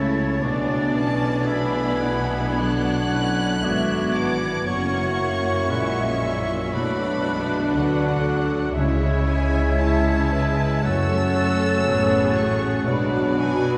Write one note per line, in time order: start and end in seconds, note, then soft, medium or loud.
0.00 0.41 C#2 medium
0.00 0.48 A2 medium
0.00 0.41 C#3 medium
0.00 0.44 C#3 medium
0.00 0.44 A3 medium
0.00 4.52 A3 medium
0.00 0.16 C#4 soft
0.00 0.42 C#4 medium
0.00 0.43 E4 medium
0.00 0.45 E4 medium
0.00 0.48 E4 soft
0.00 0.44 A4 medium
0.00 1.21 A4 soft
0.00 0.42 C#5 medium
0.00 0.43 C#5 medium
0.00 0.47 C#5 medium
0.00 1.46 A6 medium
0.17 0.48 C#4 soft
0.41 3.64 B1 medium
0.41 3.65 B2 medium
0.41 4.34 B2 medium
0.41 0.97 F#3 medium
0.41 0.95 B3 medium
0.41 1.47 D4 medium
0.41 4.52 D4 medium
0.41 2.59 D4 medium
0.41 2.55 G#4 medium
0.41 1.48 D5 medium
0.41 2.56 D5 medium
0.70 2.31 B3 soft
0.95 2.61 E3 medium
0.95 1.49 C#4 medium
0.95 2.03 D4 soft
0.95 1.45 A5 medium
1.23 1.75 A4 medium
1.46 3.63 B3 medium
1.46 2.05 D4 medium
1.46 3.63 B4 soft
1.46 2.02 E5 medium
1.46 2.60 B5 medium
1.46 6.48 G#6 medium
1.76 3.37 A4 medium
2.01 3.12 D4 medium
2.01 2.60 E4 medium
2.01 2.56 F#5 medium
2.33 2.86 B3 soft
2.57 3.64 D3 medium
2.57 6.50 F#3 medium
2.57 3.13 D4 medium
2.57 3.12 D4 medium
2.57 3.64 F#4 medium
2.57 3.62 D5 medium
2.57 3.65 F#5 medium
2.57 4.17 F#6 loud
2.87 4.42 B3 medium
3.12 3.64 C#4 medium
3.12 4.16 D4 medium
3.12 3.67 E4 medium
3.39 3.91 A4 medium
3.64 4.66 G#1 medium
3.64 4.67 G#2 medium
3.64 4.18 D3 medium
3.64 4.69 B3 medium
3.64 4.68 D4 medium
3.64 4.68 F#4 medium
3.64 4.73 B4 soft
3.64 4.69 D5 medium
3.64 4.16 E5 medium
3.92 4.73 A4 soft
4.15 4.69 E3 medium
4.15 4.73 D4 soft
4.15 4.65 F#5 medium
4.15 4.68 D6 medium
4.43 4.73 B3 soft
4.66 5.69 F#1 medium
4.66 5.69 F#2 medium
4.66 6.78 F#2 medium
4.66 5.71 F#3 medium
4.66 6.70 A#3 medium
4.66 5.70 A#3 medium
4.66 5.19 C#4 medium
4.66 6.70 E4 medium
4.66 6.69 F#4 medium
4.66 5.73 F#4 medium
4.66 5.72 C#5 medium
4.66 5.68 F#5 medium
4.66 6.69 C#6 loud
4.94 6.48 A#3 soft
5.21 6.71 C#4 medium
5.21 6.23 E4 medium
5.46 5.97 F#4 medium
5.70 6.72 A#1 medium
5.70 6.72 A#2 medium
5.70 6.46 G#3 medium
5.70 6.24 G#3 medium
5.70 6.47 E4 medium
5.70 6.78 A#4 medium
5.70 6.73 E5 medium
5.70 6.07 F#5 medium
5.98 7.49 F#4 medium
6.22 6.75 F#3 medium
6.22 6.79 E4 soft
6.22 7.45 E5 medium
6.49 6.79 A#3 medium
6.72 7.75 B1 medium
6.72 7.74 B2 medium
6.72 8.80 B2 medium
6.72 7.25 F#3 medium
6.72 8.76 A3 medium
6.72 7.25 A3 medium
6.72 8.72 D4 medium
6.72 8.76 D4 medium
6.72 7.78 D4 medium
6.72 7.72 F#4 medium
6.72 7.74 D5 medium
6.72 8.22 B5 medium
6.72 7.73 F#6 medium
7.01 8.49 A3 medium
7.24 7.75 E3 medium
7.24 7.75 G#3 medium
7.24 8.24 D4 medium
7.50 7.99 F#4 medium
7.74 8.75 D2 medium
7.74 8.74 D3 medium
7.74 8.75 D3 medium
7.74 8.75 F#3 medium
7.74 8.76 F#4 medium
7.74 8.80 A4 medium
7.74 8.25 B4 medium
7.74 8.71 D5 medium
7.74 8.76 F#5 medium
7.74 8.74 F#6 medium
8.01 8.80 F#4 soft
8.24 8.80 D4 medium
8.24 8.75 A4 medium
8.50 8.80 A3 soft
8.74 10.80 C#2 medium
8.74 10.80 C#3 medium
8.74 10.88 C#3 medium
8.74 10.84 G#3 medium
8.74 9.25 G#3 medium
8.74 10.81 G#3 medium
8.74 12.83 C#4 medium
8.74 10.80 E4 medium
8.74 9.75 E4 medium
8.74 9.74 C#5 medium
8.74 10.84 E5 medium
8.74 10.80 E5 medium
8.74 10.81 G#6 medium
9.25 10.81 G#3 medium
9.25 10.29 E4 medium
9.25 9.72 G#5 medium
9.51 10.02 G#4 medium
9.76 10.82 E4 medium
9.76 10.28 C#5 medium
9.76 10.83 A5 medium
10.30 12.90 E4 medium
10.30 10.84 B4 medium
10.82 11.85 F#1 medium
10.82 11.85 F#2 medium
10.82 12.91 F#2 medium
10.82 13.78 F#3 medium
10.82 11.87 A3 medium
10.82 12.87 A3 medium
10.82 12.87 C#4 medium
10.82 11.35 F#4 medium
10.82 12.87 A4 medium
10.82 11.87 C#5 medium
10.82 13.78 F#5 medium
10.82 12.37 E6 loud
10.86 12.87 A6 medium
11.11 12.61 A3 medium
11.37 12.36 C#4 medium
11.37 11.87 A4 medium
11.87 12.87 A1 medium
11.87 12.86 A2 medium
11.87 12.37 B3 medium
11.87 12.84 G#4 medium
11.87 13.78 A4 medium
11.87 12.86 C#5 medium
12.36 12.86 A3 medium
12.36 12.86 C#6 medium
12.62 13.78 A3 soft
12.86 13.78 B1 medium
12.86 13.78 B2 medium
12.86 13.78 F#3 medium
12.86 13.36 G#3 medium
12.86 13.78 D4 medium
12.86 13.78 F#4 medium
12.86 13.78 B4 medium
12.86 13.78 D5 medium
12.86 13.78 B5 medium
13.12 13.78 B3 medium
13.35 13.78 F#3 medium
13.35 13.78 D4 medium
13.35 13.78 G#5 medium
13.62 13.78 F#4 medium